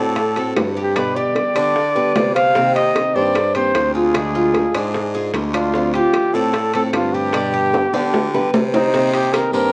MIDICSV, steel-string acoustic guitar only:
0, 0, Header, 1, 3, 480
1, 0, Start_track
1, 0, Key_signature, -3, "minor"
1, 0, Tempo, 398671
1, 1157, Time_signature, 4, 2, 24, 8
1, 11704, End_track
2, 0, Start_track
2, 0, Title_t, "Steel-string acoustic guitar"
2, 0, Program_c, 0, 25
2, 0, Note_on_c, 0, 57, 59
2, 0, Note_on_c, 0, 60, 58
2, 0, Note_on_c, 0, 66, 64
2, 184, Note_off_c, 0, 57, 0
2, 187, Note_off_c, 0, 60, 0
2, 187, Note_off_c, 0, 66, 0
2, 435, Note_on_c, 0, 66, 60
2, 450, Note_on_c, 0, 60, 57
2, 458, Note_on_c, 0, 57, 49
2, 664, Note_off_c, 0, 57, 0
2, 667, Note_off_c, 0, 66, 0
2, 671, Note_off_c, 0, 60, 0
2, 676, Note_on_c, 0, 50, 43
2, 686, Note_on_c, 0, 60, 48
2, 687, Note_on_c, 0, 66, 52
2, 1147, Note_off_c, 0, 50, 0
2, 1152, Note_off_c, 0, 60, 0
2, 1152, Note_off_c, 0, 66, 0
2, 1156, Note_on_c, 0, 47, 57
2, 1159, Note_on_c, 0, 55, 72
2, 1160, Note_on_c, 0, 50, 68
2, 1167, Note_on_c, 0, 59, 75
2, 1172, Note_on_c, 0, 67, 77
2, 1623, Note_off_c, 0, 50, 0
2, 1627, Note_off_c, 0, 47, 0
2, 1628, Note_off_c, 0, 55, 0
2, 1632, Note_off_c, 0, 59, 0
2, 1635, Note_off_c, 0, 67, 0
2, 1637, Note_on_c, 0, 50, 41
2, 1646, Note_on_c, 0, 55, 40
2, 1650, Note_on_c, 0, 59, 50
2, 1657, Note_on_c, 0, 67, 53
2, 1859, Note_off_c, 0, 67, 0
2, 1867, Note_off_c, 0, 50, 0
2, 1867, Note_off_c, 0, 59, 0
2, 1872, Note_off_c, 0, 55, 0
2, 1874, Note_on_c, 0, 67, 63
2, 1882, Note_on_c, 0, 59, 62
2, 1890, Note_on_c, 0, 50, 48
2, 1890, Note_on_c, 0, 55, 54
2, 2105, Note_off_c, 0, 67, 0
2, 2109, Note_off_c, 0, 59, 0
2, 2114, Note_off_c, 0, 50, 0
2, 2114, Note_off_c, 0, 55, 0
2, 2352, Note_on_c, 0, 67, 59
2, 2360, Note_on_c, 0, 59, 60
2, 2366, Note_on_c, 0, 55, 52
2, 2371, Note_on_c, 0, 50, 53
2, 2578, Note_off_c, 0, 50, 0
2, 2585, Note_off_c, 0, 67, 0
2, 2588, Note_off_c, 0, 55, 0
2, 2588, Note_off_c, 0, 59, 0
2, 2592, Note_on_c, 0, 50, 44
2, 3065, Note_off_c, 0, 50, 0
2, 3076, Note_on_c, 0, 48, 60
2, 3082, Note_on_c, 0, 51, 68
2, 3091, Note_on_c, 0, 58, 65
2, 3093, Note_on_c, 0, 60, 69
2, 3096, Note_on_c, 0, 67, 79
2, 3546, Note_off_c, 0, 48, 0
2, 3547, Note_off_c, 0, 51, 0
2, 3554, Note_off_c, 0, 58, 0
2, 3555, Note_off_c, 0, 60, 0
2, 3556, Note_off_c, 0, 67, 0
2, 3561, Note_on_c, 0, 51, 43
2, 3569, Note_on_c, 0, 58, 43
2, 3576, Note_on_c, 0, 60, 51
2, 3788, Note_off_c, 0, 60, 0
2, 3789, Note_off_c, 0, 51, 0
2, 3793, Note_off_c, 0, 58, 0
2, 3793, Note_on_c, 0, 67, 61
2, 3802, Note_on_c, 0, 60, 61
2, 3806, Note_on_c, 0, 58, 52
2, 3815, Note_on_c, 0, 51, 50
2, 4023, Note_off_c, 0, 51, 0
2, 4025, Note_off_c, 0, 67, 0
2, 4029, Note_off_c, 0, 60, 0
2, 4031, Note_off_c, 0, 58, 0
2, 4275, Note_on_c, 0, 67, 65
2, 4279, Note_on_c, 0, 60, 53
2, 4286, Note_on_c, 0, 58, 52
2, 4291, Note_on_c, 0, 51, 51
2, 4506, Note_off_c, 0, 67, 0
2, 4508, Note_off_c, 0, 58, 0
2, 4508, Note_off_c, 0, 60, 0
2, 4514, Note_off_c, 0, 51, 0
2, 4531, Note_on_c, 0, 60, 45
2, 4534, Note_on_c, 0, 67, 48
2, 4992, Note_on_c, 0, 50, 75
2, 4994, Note_off_c, 0, 60, 0
2, 4995, Note_off_c, 0, 67, 0
2, 5000, Note_on_c, 0, 62, 63
2, 5002, Note_on_c, 0, 56, 64
2, 5008, Note_on_c, 0, 65, 65
2, 5464, Note_off_c, 0, 50, 0
2, 5468, Note_off_c, 0, 62, 0
2, 5469, Note_off_c, 0, 56, 0
2, 5472, Note_off_c, 0, 65, 0
2, 5478, Note_on_c, 0, 50, 42
2, 5481, Note_on_c, 0, 56, 47
2, 5490, Note_on_c, 0, 62, 47
2, 5494, Note_on_c, 0, 65, 56
2, 5706, Note_off_c, 0, 65, 0
2, 5707, Note_off_c, 0, 50, 0
2, 5709, Note_off_c, 0, 56, 0
2, 5713, Note_off_c, 0, 62, 0
2, 5720, Note_on_c, 0, 65, 61
2, 5734, Note_on_c, 0, 62, 61
2, 5741, Note_on_c, 0, 56, 57
2, 5948, Note_off_c, 0, 65, 0
2, 5955, Note_off_c, 0, 62, 0
2, 5958, Note_off_c, 0, 56, 0
2, 6206, Note_on_c, 0, 65, 60
2, 6212, Note_on_c, 0, 62, 60
2, 6224, Note_on_c, 0, 56, 51
2, 6431, Note_off_c, 0, 65, 0
2, 6434, Note_off_c, 0, 62, 0
2, 6440, Note_off_c, 0, 56, 0
2, 6446, Note_on_c, 0, 50, 42
2, 6456, Note_on_c, 0, 56, 47
2, 6462, Note_on_c, 0, 62, 44
2, 6470, Note_on_c, 0, 65, 46
2, 6907, Note_off_c, 0, 50, 0
2, 6916, Note_off_c, 0, 56, 0
2, 6920, Note_off_c, 0, 62, 0
2, 6921, Note_on_c, 0, 50, 73
2, 6923, Note_off_c, 0, 65, 0
2, 6927, Note_on_c, 0, 57, 64
2, 6933, Note_on_c, 0, 60, 69
2, 6936, Note_on_c, 0, 65, 74
2, 7379, Note_off_c, 0, 50, 0
2, 7384, Note_off_c, 0, 57, 0
2, 7389, Note_off_c, 0, 60, 0
2, 7393, Note_on_c, 0, 50, 43
2, 7396, Note_off_c, 0, 65, 0
2, 7399, Note_on_c, 0, 57, 44
2, 7403, Note_on_c, 0, 60, 45
2, 7411, Note_on_c, 0, 65, 56
2, 7616, Note_off_c, 0, 65, 0
2, 7625, Note_off_c, 0, 50, 0
2, 7628, Note_off_c, 0, 57, 0
2, 7630, Note_off_c, 0, 60, 0
2, 7631, Note_on_c, 0, 65, 65
2, 7643, Note_on_c, 0, 60, 60
2, 7652, Note_on_c, 0, 57, 48
2, 7861, Note_off_c, 0, 57, 0
2, 7863, Note_off_c, 0, 60, 0
2, 7864, Note_off_c, 0, 65, 0
2, 8116, Note_on_c, 0, 65, 63
2, 8127, Note_on_c, 0, 60, 60
2, 8133, Note_on_c, 0, 57, 52
2, 8347, Note_off_c, 0, 65, 0
2, 8349, Note_off_c, 0, 57, 0
2, 8352, Note_off_c, 0, 60, 0
2, 8355, Note_on_c, 0, 50, 42
2, 8363, Note_on_c, 0, 57, 47
2, 8369, Note_on_c, 0, 60, 51
2, 8373, Note_on_c, 0, 65, 44
2, 8821, Note_off_c, 0, 50, 0
2, 8830, Note_off_c, 0, 57, 0
2, 8830, Note_on_c, 0, 47, 58
2, 8833, Note_off_c, 0, 60, 0
2, 8835, Note_off_c, 0, 65, 0
2, 8835, Note_on_c, 0, 50, 60
2, 8837, Note_on_c, 0, 55, 62
2, 8848, Note_on_c, 0, 59, 69
2, 8852, Note_on_c, 0, 67, 66
2, 9304, Note_off_c, 0, 47, 0
2, 9306, Note_off_c, 0, 50, 0
2, 9307, Note_off_c, 0, 55, 0
2, 9313, Note_off_c, 0, 59, 0
2, 9314, Note_off_c, 0, 67, 0
2, 9321, Note_on_c, 0, 50, 41
2, 9330, Note_on_c, 0, 55, 46
2, 9333, Note_on_c, 0, 59, 45
2, 9335, Note_on_c, 0, 67, 45
2, 9537, Note_off_c, 0, 67, 0
2, 9549, Note_off_c, 0, 50, 0
2, 9552, Note_off_c, 0, 59, 0
2, 9552, Note_on_c, 0, 67, 64
2, 9553, Note_off_c, 0, 55, 0
2, 9566, Note_on_c, 0, 59, 59
2, 9567, Note_on_c, 0, 55, 54
2, 9573, Note_on_c, 0, 50, 50
2, 9780, Note_off_c, 0, 50, 0
2, 9784, Note_off_c, 0, 55, 0
2, 9784, Note_off_c, 0, 67, 0
2, 9789, Note_off_c, 0, 59, 0
2, 10038, Note_on_c, 0, 67, 64
2, 10047, Note_on_c, 0, 59, 60
2, 10048, Note_on_c, 0, 55, 53
2, 10057, Note_on_c, 0, 50, 48
2, 10262, Note_off_c, 0, 50, 0
2, 10267, Note_off_c, 0, 67, 0
2, 10270, Note_off_c, 0, 55, 0
2, 10272, Note_off_c, 0, 59, 0
2, 10276, Note_on_c, 0, 50, 41
2, 10284, Note_on_c, 0, 55, 46
2, 10294, Note_on_c, 0, 59, 45
2, 10299, Note_on_c, 0, 67, 48
2, 10746, Note_off_c, 0, 50, 0
2, 10750, Note_off_c, 0, 55, 0
2, 10755, Note_off_c, 0, 59, 0
2, 10758, Note_off_c, 0, 67, 0
2, 10760, Note_on_c, 0, 48, 76
2, 10764, Note_on_c, 0, 51, 65
2, 10768, Note_on_c, 0, 58, 73
2, 10770, Note_on_c, 0, 60, 70
2, 10773, Note_on_c, 0, 67, 72
2, 11215, Note_off_c, 0, 51, 0
2, 11220, Note_off_c, 0, 58, 0
2, 11224, Note_off_c, 0, 60, 0
2, 11227, Note_off_c, 0, 67, 0
2, 11228, Note_off_c, 0, 48, 0
2, 11230, Note_on_c, 0, 51, 44
2, 11234, Note_on_c, 0, 58, 46
2, 11239, Note_on_c, 0, 60, 49
2, 11242, Note_on_c, 0, 67, 55
2, 11448, Note_off_c, 0, 67, 0
2, 11456, Note_off_c, 0, 60, 0
2, 11460, Note_off_c, 0, 58, 0
2, 11463, Note_off_c, 0, 51, 0
2, 11463, Note_on_c, 0, 67, 63
2, 11471, Note_on_c, 0, 60, 57
2, 11474, Note_on_c, 0, 58, 56
2, 11482, Note_on_c, 0, 51, 52
2, 11697, Note_off_c, 0, 51, 0
2, 11698, Note_off_c, 0, 58, 0
2, 11699, Note_off_c, 0, 67, 0
2, 11700, Note_off_c, 0, 60, 0
2, 11704, End_track
3, 0, Start_track
3, 0, Title_t, "Muted steel-string acoustic guitar strokes"
3, 197, Note_on_c, 9, 29, 49
3, 317, Note_off_c, 9, 29, 0
3, 2127, Note_on_c, 9, 29, 52
3, 2248, Note_off_c, 9, 29, 0
3, 4036, Note_on_c, 9, 29, 56
3, 4156, Note_off_c, 9, 29, 0
3, 5962, Note_on_c, 9, 29, 53
3, 6082, Note_off_c, 9, 29, 0
3, 7870, Note_on_c, 9, 29, 53
3, 7990, Note_off_c, 9, 29, 0
3, 9794, Note_on_c, 9, 29, 55
3, 9915, Note_off_c, 9, 29, 0
3, 11704, End_track
0, 0, End_of_file